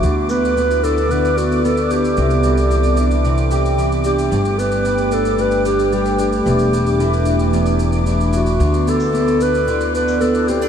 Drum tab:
SH |x-xxxxxxxxxxxxxx|xxxxxxxxxxxxxxxx|xxxxxxxxxxxxxxxx|xxxxxxxxxxxxxxxx|

SH |xxxxxxxxxxxxxxxx|